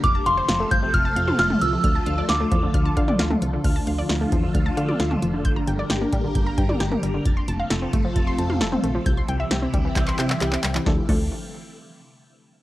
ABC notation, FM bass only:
X:1
M:4/4
L:1/8
Q:1/4=133
K:Dm
V:1 name="FM bass" clef=bass
F,,, F,,, F,,, G,,, F,,, F,, F,,, C,, | D,, D,, D,, E,, D,, D, D,, C,, | D,, D,, D,, E,, D,, D, D,, F,,, | G,,, G,,, G,,, A,,, G,,, G,, G,,, G,,, |
F,,, F,,, F,,, G,,, F,,, F,, F,,, B,,, | C,, C,, C,, D,, C,, C, C,, C,, | D,, D,, z6 |]